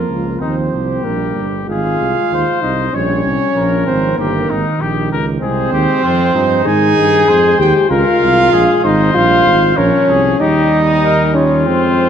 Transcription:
Already playing: trombone F3, french horn A#3, cornet F4, trumpet A#4
0.09 tuba C#2
0.39 tuba D#2, french horn C4, cornet D#4, trumpet C5
0.72 tuba C2, cornet G4
1.02 tuba A#1, trombone G3, french horn A#3, trumpet A#4
1.36 tuba G1
1.67 tuba G#1, trombone G#3, french horn F4, cornet G#4, trumpet F5
2.01 tuba C2
2.31 tuba D#2, cornet C5
2.61 tuba C2, french horn D#4, trumpet D#5
2.93 tuba A#1, trombone G3, french horn C#4, trumpet C#5, cornet C#5
3.25 tuba C2
3.54 tuba A#1, trombone F3, cornet A#4
3.86 tuba G#1, french horn C4, trumpet C5
4.17 tuba G1, trombone D#3, french horn A#3, cornet G4, trumpet A#4
4.50 tuba G#1, cornet D#4
4.80 tuba A#1, cornet G4
5.11 tuba C#2, cornet A#4
5.41 tuba C2, trombone G#3, french horn C4, cornet G#4, trumpet C5
5.72 tuba D#2, cornet G4
6.02 tuba F2, trombone F3, cornet F4
6.34 tuba G2, cornet D#4
6.64 tuba G#2, trombone D#3, french horn G#4, trumpet G#5
6.98 tuba G2
7.27 tuba F2, trombone G#3, cornet C5
7.59 tuba D#2, french horn G4, trumpet G5
7.89 tuba C#2, trombone G#3, french horn F4, cornet A#4, trumpet F5
8.21 tuba C2
8.52 tuba A#1, cornet G#4
8.84 tuba G#1, french horn D#4, cornet C5, trumpet D#5
9.14 tuba A#1, trombone G3, french horn F4, trumpet F5
9.46 tuba G#1
9.77 tuba A#1, trombone F3, french horn C#4, cornet A#4, trumpet C#5
10.08 tuba C2, cornet G#4
10.39 tuba D#2, trombone G3, french horn D#4, cornet G4, trumpet D#5
11.04 cornet A#4
11.34 french horn C#4, cornet F4, trumpet C#5
11.65 tuba F2, trombone G#3, french horn C4, trumpet C5

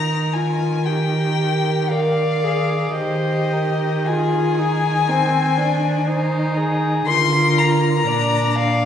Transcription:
Already playing: cello D#3, viola D#4, violin A#4 A#5
0.33 viola F4, violin G#5
0.86 viola G4, violin G5
1.90 viola A#4, violin D5 F5
2.44 viola G#4
2.94 cello D#3, viola G4, violin C5 D#5
3.52 violin A#4
4.06 viola F4, violin G#4 G#5
4.59 viola D#4
5.08 viola C4, violin C5
5.58 viola D4
6.07 viola D#4, violin C5
6.57 violin G#4
7.06 cello D3, viola F4, violin A#4 C6
7.58 violin A#5
8.07 cello A#2, viola D4, violin D5
8.58 violin F5

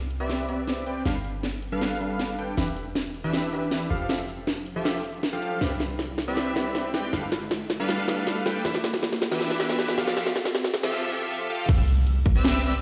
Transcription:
Already playing: 808-style bass C2, riser
0.11 closed hi-hat
0.20 analog polysynth C4 G4 B4 D5 E5
0.30 snare, closed hi-hat
0.49 analog polysynth C4 G4 B4 D5 E5, closed hi-hat
0.68 snare, closed hi-hat
0.86 analog polysynth C4 G4 B4 D5 G5, closed hi-hat
1.05 808-style bass G1, analog polysynth G3 D4 A4 B4 F5, snare, closed hi-hat
1.24 closed hi-hat
1.43 snare, closed hi-hat
1.62 closed hi-hat
1.72 analog polysynth G3 D4 A4 B4 F5
1.81 snare, closed hi-hat
2.00 analog polysynth G3 D4 A4 B4 F5, closed hi-hat
2.19 snare, closed hi-hat
2.38 analog polysynth G3 D4 A4 B4 G5, closed hi-hat
2.57 808-style bass E1, analog polysynth E3 D4 G4 B4 E5, snare, closed hi-hat
2.76 closed hi-hat
2.95 snare, closed hi-hat
3.14 closed hi-hat
3.24 analog polysynth E3 D4 G4 B4 E5
3.33 snare, closed hi-hat
3.52 analog polysynth E3 D4 G4 B4 E5, closed hi-hat
3.71 snare, closed hi-hat
3.90 808-style bass F1, analog polysynth F3 F4 G4 A4 F5, closed hi-hat
4.09 analog polysynth F3 F4 G4 A4 E5, snare, closed hi-hat
4.28 closed hi-hat
4.47 snare, closed hi-hat
4.66 closed hi-hat
4.76 analog polysynth F3 F4 G4 A4 E5
4.85 snare, closed hi-hat
5.04 closed hi-hat
5.23 snare, closed hi-hat
5.33 analog polysynth F3 F4 G4 A4 F5
5.42 closed hi-hat
5.61 808-style bass C2, analog polysynth C4 G4 B4 D5 E5, snare, closed hi-hat
5.80 snare, closed hi-hat
5.99 snare, closed hi-hat
6.18 snare, closed hi-hat
6.28 analog polysynth C4 G4 B4 D5 E5
6.37 snare, closed hi-hat
6.56 analog polysynth C4 G4 B4 D5 E5, snare, closed hi-hat
6.75 snare, closed hi-hat
6.94 analog polysynth C4 G4 B4 D5 G5, snare, closed hi-hat
7.13 808-style bass G1, analog polysynth G3 D4 A4 B4 F5, snare, closed hi-hat
7.32 snare, closed hi-hat
7.51 snare, closed hi-hat
7.70 snare, closed hi-hat
7.80 analog polysynth G3 D4 A4 B4 F5
7.89 snare, closed hi-hat
8.08 analog polysynth G3 D4 A4 B4 F5, snare, closed hi-hat
8.27 snare, closed hi-hat
8.46 analog polysynth G3 D4 A4 B4 G5, snare, closed hi-hat
8.65 808-style bass E1, analog polysynth E3 D4 G4 B4 E5, snare, closed hi-hat
8.74 snare
8.84 snare, closed hi-hat
8.94 snare
9.03 snare, closed hi-hat
9.12 snare
9.22 snare, closed hi-hat
9.32 analog polysynth E3 D4 G4 B4 E5, snare
9.41 snare, closed hi-hat
9.50 snare
9.60 analog polysynth E3 D4 G4 B4 E5, snare, closed hi-hat
9.69 snare
9.79 snare, closed hi-hat
9.88 snare
9.98 808-style bass F1, analog polysynth F3 F4 G4 A4 F5, snare, closed hi-hat
10.07 snare
10.17 analog polysynth F3 F4 G4 A4 E5, snare, closed hi-hat
10.27 snare
10.36 snare, closed hi-hat
10.45 snare
10.55 snare, closed hi-hat
10.64 snare
10.74 snare, closed hi-hat
10.83 analog polysynth F3 F4 G4 A4 E5, snare
11.12 analog polysynth F3 F4 G4 A4 E5
11.50 analog polysynth F3 F4 G4 A4 F5
11.69 808-style bass C2, analog polysynth C4 G4 B4 D5 E5, digital synth lead E6, kick, closed hi-hat, crash, impact
11.88 closed hi-hat
12.07 closed hi-hat
12.26 kick, closed hi-hat
12.35 analog polysynth C4 G4 B4 D5 E5, digital synth lead E6
12.45 snare, closed hi-hat
12.64 analog polysynth C4 G4 B4 D5 E5, digital synth lead E6, closed hi-hat

